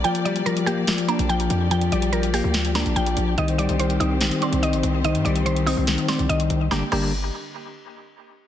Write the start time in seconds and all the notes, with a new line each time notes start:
Already playing: A#3 D5
0.04 F3 G4 G5, closed hi-hat
0.15 closed hi-hat
0.25 G3 D5, closed hi-hat
0.36 closed hi-hat
0.46 F3 A#4, closed hi-hat
0.57 closed hi-hat
0.66 A#3 G4, closed hi-hat
0.87 F3, snare, closed hi-hat
0.98 closed hi-hat
1.08 A#3 D4, closed hi-hat
1.19 A#1, closed hi-hat
1.29 F3 G5, closed hi-hat
1.40 closed hi-hat
1.50 F2, closed hi-hat
1.71 F3 G5, closed hi-hat
1.81 closed hi-hat
1.92 A#1 G3 D5, closed hi-hat
2.02 closed hi-hat
2.13 F3 A#4, closed hi-hat
2.23 closed hi-hat
2.33 A#3 G4, open hi-hat
2.44 D2
2.54 F3, snare, closed hi-hat
2.65 closed hi-hat
2.75 A#3 D4, snare, closed hi-hat
2.86 A#1, closed hi-hat
2.96 A#1 F3 G5, closed hi-hat
3.06 closed hi-hat
3.17 A#1, closed hi-hat
3.38 C2 D#3 C4 C5 D#5, closed hi-hat
3.48 closed hi-hat
3.58 G3 D5, closed hi-hat
3.69 C2, closed hi-hat
3.79 D#3 C5, closed hi-hat
3.90 closed hi-hat
4.00 C2 C4 D#4, closed hi-hat
4.21 A#1 D#3, snare, closed hi-hat
4.31 closed hi-hat
4.42 C4 D5, closed hi-hat
4.52 C2, closed hi-hat
4.63 D#3 D#5, closed hi-hat
4.73 A#1, closed hi-hat
4.83 C2, closed hi-hat
5.04 D#3 D#5, closed hi-hat
5.15 G2, closed hi-hat
5.25 C2 G3 D5, closed hi-hat
5.36 closed hi-hat
5.46 D#3 C5, closed hi-hat
5.57 closed hi-hat
5.66 C4 D#4, open hi-hat
5.77 C2
5.87 D#3, snare, closed hi-hat
5.98 closed hi-hat
6.08 C4 D5, snare, closed hi-hat
6.19 C2, closed hi-hat
6.29 C2 D#3 D#5, closed hi-hat
6.40 closed hi-hat
6.50 C2, closed hi-hat
6.71 G1 D3 G3 A#3 D4 G4 D5, snare
6.92 G1 D3 G3 A#3 D4 G4, crash